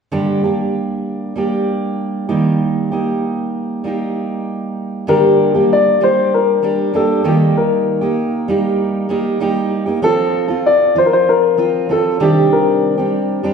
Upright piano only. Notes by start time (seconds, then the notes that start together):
5.09 A#4
5.73 D5
6.04 C5
6.34 A#4
6.96 A4
7.28 G4
7.57 A#4
10.04 A4
10.66 D5
10.98 C5
11.06 A#4
11.13 C5
11.29 A#4
11.92 A4
12.23 G4
12.53 A#4